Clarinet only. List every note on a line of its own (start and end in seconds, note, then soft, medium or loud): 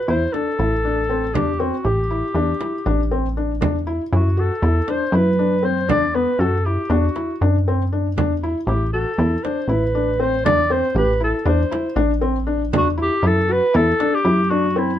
0.10 0.35 C5 medium
0.33 1.36 A4 medium
1.34 1.61 G4 medium
1.60 1.88 F#4 medium
1.86 3.37 G4 medium
4.15 4.41 F#4 medium
4.40 4.92 A4 medium
4.90 5.17 C5 medium
5.16 5.67 B4 medium
5.65 5.90 C5 medium
5.90 6.17 D5 medium
6.15 6.42 B4 medium
6.40 6.67 A4 medium
6.65 6.94 G4 medium
6.92 7.49 F#4 medium
8.67 8.91 G4 medium
8.93 9.45 A4 medium
9.44 9.70 C5 medium
9.69 10.22 B4 medium
10.20 10.45 C5 medium
10.46 10.73 D5 loud
10.72 10.97 C5 loud
10.98 11.21 B4 loud
11.24 11.46 A4 medium
11.48 12.01 C5 medium
12.78 12.88 F#4 loud
13.02 13.28 G4 medium
13.27 13.54 A4 loud
13.52 13.77 B4 loud
13.76 14.16 A4 loud
14.14 14.52 G4 medium
14.51 14.79 F#4 medium
14.78 14.99 E4 medium